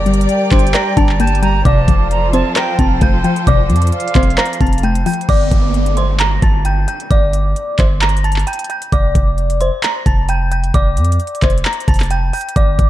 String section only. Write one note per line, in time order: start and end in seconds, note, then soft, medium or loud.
0.00 1.62 G3 medium
0.00 1.62 G4 medium
0.00 1.62 A#4 medium
0.00 1.62 D5 loud
1.65 5.25 F3 medium
1.65 5.25 F4 medium
1.65 5.25 A4 medium
1.65 5.25 C5 medium